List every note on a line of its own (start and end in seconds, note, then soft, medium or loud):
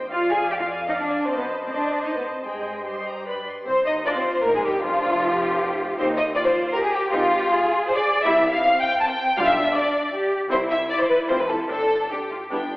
0.00 0.11 C5 medium
0.00 0.11 C5 soft
0.00 0.11 G5 soft
0.10 1.27 F2 medium
0.10 0.30 F4 loud
0.10 0.29 D5 medium
0.10 0.29 F5 medium
0.10 0.30 F5 medium
0.10 0.31 F5 medium
0.30 0.50 G#4 medium
0.30 0.47 D5 medium
0.30 0.47 F5 medium
0.30 0.50 G#5 medium
0.48 0.54 G4 medium
0.48 0.66 D5 medium
0.48 0.67 F5 medium
0.48 0.70 F5 medium
0.48 0.60 G5 medium
0.59 0.67 F4 medium
0.59 0.88 F5 medium
0.68 0.87 D5 medium
0.68 0.87 F5 medium
0.68 0.89 G#5 medium
0.88 0.92 D#4 medium
0.88 1.05 D5 medium
0.88 0.98 D#5 medium
0.88 1.05 F5 medium
0.88 1.07 F5 medium
0.97 1.27 D4 medium
0.97 1.27 D5 medium
1.06 1.27 D5 medium
1.06 1.26 F5 medium
1.06 1.28 G#5 medium
1.25 2.01 F#2 medium
1.25 1.37 C4 medium
1.25 1.36 C5 medium
1.25 1.63 C5 medium
1.25 1.63 D#5 medium
1.25 1.64 A5 medium
1.36 1.45 B3 medium
1.36 1.65 B4 medium
1.65 1.70 C4 medium
1.65 1.75 C5 medium
1.65 2.03 C5 medium
1.65 2.03 D#5 medium
1.65 2.04 A5 medium
1.73 2.05 D4 medium
1.73 2.04 D5 medium
2.03 2.44 A2 medium
2.03 2.15 D#4 medium
2.03 2.44 C5 medium
2.03 2.14 D#5 medium
2.03 2.44 D#5 medium
2.03 2.45 A5 medium
2.14 2.26 B3 medium
2.14 2.25 B4 medium
2.24 2.46 C4 medium
2.24 2.45 C5 medium
2.44 3.25 G2 medium
2.44 2.86 G#3 medium
2.44 2.86 G#4 medium
2.44 2.85 C5 medium
2.44 2.84 D#5 medium
2.44 2.86 G5 medium
2.85 3.47 G3 medium
2.85 3.45 G4 soft
2.85 3.26 C5 medium
2.85 3.25 D#5 medium
2.85 3.05 C6 medium
3.08 3.27 A#5 medium
3.26 3.46 G2 medium
3.26 3.46 B4 soft
3.26 3.46 D5 soft
3.26 3.47 B5 medium
3.49 3.68 C6 medium
3.66 3.74 C2 loud
3.66 3.85 C4 medium
3.66 3.85 C5 loud
3.66 3.85 C5 medium
3.86 4.05 D#2 medium
3.86 4.05 D#4 medium
3.86 3.94 D#5 loud
3.86 4.07 D#5 medium
4.05 4.15 D2 medium
4.05 4.15 D4 medium
4.05 4.42 F4 medium
4.05 4.10 D5 loud
4.05 4.16 D5 medium
4.15 4.24 C2 medium
4.15 4.24 C4 medium
4.15 4.44 C5 medium
4.15 4.46 C5 medium
4.44 4.55 A#1 medium
4.44 4.49 A#3 medium
4.44 4.84 D#4 medium
4.44 4.54 A#4 loud
4.44 4.55 A#4 medium
4.54 4.64 G#1 medium
4.54 4.64 G#3 medium
4.54 4.59 G#4 medium
4.54 4.61 G#4 medium
4.64 4.83 G1 medium
4.64 4.84 G3 medium
4.64 4.83 G4 medium
4.64 4.74 G4 medium
4.84 5.99 F1 loud
4.84 5.99 F3 medium
4.84 5.22 D4 medium
4.84 5.96 F4 loud
4.84 5.97 F4 medium
5.23 5.99 G4 medium
5.98 6.30 D#2 medium
5.98 6.16 C4 medium
5.98 6.36 D#4 medium
5.98 6.16 G4 medium
5.98 6.06 C5 loud
5.98 6.07 C5 medium
6.17 6.25 D#5 loud
6.17 6.26 D#5 medium
6.36 6.74 F4 medium
6.36 6.40 D5 loud
6.36 6.46 D5 medium
6.45 6.53 C5 loud
6.45 6.75 C5 medium
6.73 7.51 G4 medium
6.73 6.83 A#4 loud
6.73 6.84 A#4 medium
6.83 6.93 G#4 medium
6.83 6.88 G#4 medium
6.93 7.12 G4 loud
6.93 7.02 G4 medium
7.12 7.44 G#1 medium
7.12 7.30 C4 medium
7.12 7.30 D#4 medium
7.12 7.86 F4 loud
7.12 7.87 F4 medium
7.50 8.25 G#4 medium
7.87 7.97 C5 loud
7.87 7.91 C5 medium
7.96 8.04 D5 medium
7.96 8.24 D5 loud
8.24 8.57 C2 loud
8.24 8.43 G3 medium
8.24 8.62 E4 medium
8.24 8.43 E4 medium
8.24 8.53 E5 loud
8.24 8.32 E5 medium
8.52 8.80 F5 loud
8.52 8.81 F5 loud
8.63 9.38 C4 medium
8.81 9.00 G5 loud
9.00 9.09 A5 loud
9.00 9.04 A5 loud
9.09 9.17 G5 loud
9.09 9.37 G5 loud
9.37 9.69 B1 loud
9.37 9.55 G3 medium
9.37 10.11 D4 medium
9.37 9.55 F4 medium
9.37 9.47 F5 loud
9.48 9.75 E5 loud
9.75 10.13 D5 loud
9.75 10.12 D5 medium
10.13 10.50 G4 medium
10.50 10.83 C2 medium
10.50 10.68 C4 medium
10.50 10.68 E4 medium
10.50 11.66 E4 medium
10.50 10.58 C5 loud
10.50 10.60 C5 loud
10.70 10.89 E5 medium
10.70 10.79 E5 loud
10.90 10.93 D5 medium
10.90 10.99 D5 loud
11.00 11.09 C5 medium
11.09 11.17 B4 medium
11.09 11.18 B4 loud
11.28 11.62 F1 medium
11.28 11.47 C4 medium
11.28 11.47 F4 medium
11.28 11.38 C5 medium
11.28 11.32 C5 loud
11.38 11.48 B4 medium
11.38 11.43 B4 medium
11.48 11.68 A4 medium
11.48 11.58 A4 medium
11.69 12.04 G1 medium
11.69 11.88 C4 medium
11.69 11.88 D4 medium
11.69 12.06 D4 medium
11.69 12.09 A4 medium
11.69 12.10 A4 loud
12.11 12.19 D4 medium
12.11 12.51 G4 medium
12.11 12.52 G4 medium
12.31 12.39 F4 medium
12.51 12.77 G1 medium
12.51 12.59 G3 medium
12.51 12.70 B3 medium
12.51 12.70 D4 medium
12.51 12.61 E4 medium
12.51 12.60 G4 medium
12.51 12.77 G5 medium
12.61 12.77 D4 medium